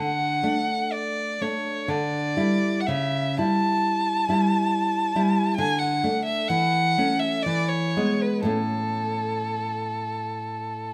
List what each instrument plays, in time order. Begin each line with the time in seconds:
Already playing: nylon-string guitar D3, violin F#5
0.43 nylon-string guitar A3 D4
0.92 violin D5
1.41 nylon-string guitar A3 D4, violin C#5
1.88 nylon-string guitar D3, violin D5
2.36 nylon-string guitar G3 E4
2.80 violin F#5
2.87 nylon-string guitar C#3, violin E5
3.37 nylon-string guitar G3 E4, violin A5
4.29 nylon-string guitar G3 E4
5.16 nylon-string guitar G3 E4
5.56 nylon-string guitar D3, violin G#5
5.79 violin F#5
6.03 nylon-string guitar A3 D4
6.24 violin E5
6.48 nylon-string guitar E3, violin F#5
6.98 nylon-string guitar A3 C#4
7.19 violin E5
7.42 nylon-string guitar E3, violin D5
7.68 violin C#5
7.97 nylon-string guitar G#3 B3
8.22 violin B4
8.43 nylon-string guitar A2 A3 C#4, violin A4